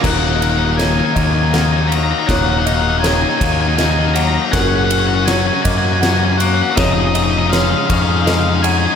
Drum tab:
CC |x-----|------|------|------|
RD |-xxxxx|xxxxxx|xxxxxx|xxxxxx|
SD |o-o-o-|o-o-o-|o-o-o-|o-o-o-|
BD |o--o--|o--o--|o--o--|o--o--|